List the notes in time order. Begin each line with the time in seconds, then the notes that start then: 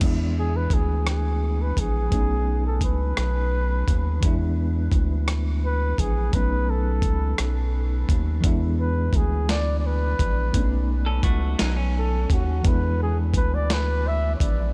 0.00 E2 E3 G#3 B3 D4, kick, closed hi-hat, crash
0.05 E4
0.39 G#4
0.57 B4
0.70 D2 G#4, kick, closed hi-hat
1.07 G#4, cross-stick, closed hi-hat
1.62 B4
1.77 A#1 G#4, kick, closed hi-hat
2.09 B1 F#3 A3 B3, kick, closed hi-hat
2.14 C#4 D#4
2.67 A4
2.81 C#2 B4, kick, closed hi-hat
3.17 B1, cross-stick, closed hi-hat
3.88 D#2, kick, closed hi-hat
4.20 E2 E3 G#3 B3, kick, closed hi-hat
4.25 D4 E4
4.92 D2, kick, closed hi-hat
5.28 cross-stick, closed hi-hat
5.65 B4
5.98 A#1 G#4, kick, closed hi-hat
6.31 B1 F#3 A3 B3 B4, kick, closed hi-hat
6.35 C#4 D#4
6.70 A4
7.02 C#2, kick, closed hi-hat
7.38 B1, cross-stick, closed hi-hat
8.09 D#2, kick, closed hi-hat
8.41 E2 E3 G#3 B3, kick, closed hi-hat
8.45 D4 E4
8.80 B4
9.13 D2 G#4, kick, closed hi-hat
9.49 D5, snare, closed hi-hat
9.79 D5
9.87 B4
10.19 A#1, kick, closed hi-hat
10.52 B1 F#3 A3 B3, kick, closed hi-hat
10.56 C#4 D4
10.64 D#4
11.06 C#4 A4
11.23 C#2 A3 F#4, kick, closed hi-hat
11.59 B1 F#3 D#4, snare, closed hi-hat
11.77 C#4
11.98 A4
12.30 D#2 F#4, kick, closed hi-hat
12.62 E2 E3 G#3 B3, kick, closed hi-hat
12.67 D4 E4 B4
13.03 G#4
13.34 D2 B4, kick, closed hi-hat
13.55 D5
13.70 B4, snare, closed hi-hat
14.08 E5
14.36 C#5
14.40 A#1 D5, kick, closed hi-hat